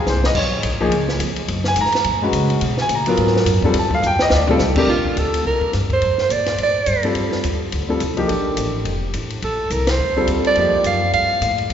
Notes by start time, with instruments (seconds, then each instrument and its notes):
0.07 upright bass C2, grand piano C5, snare, hi-hat pedal
0.24 grand piano D#5, snare
0.35 upright bass B1, grand piano C#5, kick, crash
0.63 upright bass A#1, hi-hat pedal, ride
0.80 grand piano F3 A#3 D#4 G#4
0.91 upright bass C#2, ride
1.08 snare
1.19 upright bass F2, hi-hat pedal, ride
1.36 muted upright bass stroke, ride
1.48 upright bass F#2, ride
1.64 grand piano G#5, snare
1.76 upright bass G#2, hi-hat pedal, ride
1.81 grand piano A#5
1.86 snare
1.92 muted upright bass stroke, snare, ride
2.04 upright bass A#2, ride
2.22 grand piano G#3 C#4 F#4 B4
2.33 upright bass C#3, hi-hat pedal, ride
2.50 ride
2.61 upright bass B2, ride
2.78 grand piano G#5, snare
2.89 upright bass A#2, hi-hat pedal, ride
2.95 grand piano A#5
3.06 grand piano F#3 B3 F4 A#4, ride
3.17 upright bass G#2, ride
3.27 snare
3.36 snare
3.45 upright bass F#2, hi-hat pedal, ride
3.62 grand piano G3 C4 F4 A4, kick
3.74 upright bass F2, ride
3.79 grand piano A5
3.91 grand piano F5, kick
4.02 upright bass D#2, hi-hat pedal
4.06 grand piano G5
4.19 grand piano D#5, snare
4.30 upright bass D2, snare
4.35 grand piano D5
4.47 grand piano G3 C4 F4 A4, floor tom
4.59 upright bass C2, snare, hi-hat pedal
4.76 grand piano C3 A3 D4 G4 A#4, kick, crash
4.87 upright bass A#1, soprano saxophone F4
5.05 kick
5.17 upright bass D2, soprano saxophone A4, hi-hat pedal, ride
5.34 ride
5.45 upright bass C2, soprano saxophone A#4
5.61 muted upright bass stroke, kick
5.73 upright bass G2, snare, hi-hat pedal, ride
5.90 soprano saxophone C5, kick, ride
6.02 upright bass F2, ride
6.18 soprano saxophone C5, muted upright bass stroke, snare
6.29 upright bass A#2, soprano saxophone D5, hi-hat pedal, ride
6.46 snare, ride
6.58 upright bass A2, ride
6.63 soprano saxophone D5
6.86 upright bass G2, hi-hat pedal, ride
7.03 grand piano G3 C4 F4 A4, ride
7.15 upright bass F2, ride
7.32 snare
7.44 upright bass D#2, hi-hat pedal, ride
7.72 upright bass D2, ride
7.89 grand piano G3 C4 F4 A4
8.00 upright bass C2, hi-hat pedal, ride
8.17 grand piano F3 A#3 D#4 G4, ride
8.28 upright bass A#1, grand piano D4 G4 A4 A#4, ride
8.57 upright bass A1, hi-hat pedal, ride
8.85 upright bass F1, ride
9.14 upright bass A1, hi-hat pedal, ride
9.30 ride
9.42 upright bass A#1, soprano saxophone A4, ride
9.70 upright bass C2, soprano saxophone A#4, hi-hat pedal, ride
9.87 soprano saxophone C5, snare, ride
9.98 upright bass D2
10.17 grand piano G3 C4 F4 A4
10.27 upright bass D#2, hi-hat pedal, ride
10.44 soprano saxophone D5, ride
10.55 upright bass F2, grand piano F3 A#3 D#4 G4, ride
10.72 muted upright bass stroke
10.84 upright bass F#2, soprano saxophone F5, hi-hat pedal, ride
11.13 upright bass G2, soprano saxophone F5, ride
11.41 upright bass A2, hi-hat pedal, ride
11.58 ride
11.70 upright bass F2, ride